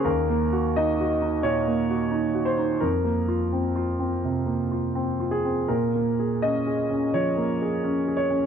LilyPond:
\new Staff \with { instrumentName = "Grand piano" } { \time 4/4 \key bes \minor \tempo 4 = 84 << { bes'4 ees''4 des''4. c''8 | bes'2. r8 aes'8 | bes'4 ees''4 des''4. des''8 | } \\ { \tuplet 3/2 { ees,8 bes8 ges'8 ees'8 ges'8 ees'8 bes,8 bes8 ges'8 ees'8 ges'8 ees'8 } | \tuplet 3/2 { f,8 bes8 f'8 c'8 f'8 c'8 c8 bes8 f'8 c'8 f'8 c'8 } | \tuplet 3/2 { bes,8 bes8 aes'8 des'8 aes'8 des'8 f8 bes8 aes'8 des'8 aes'8 des'8 } | } >> }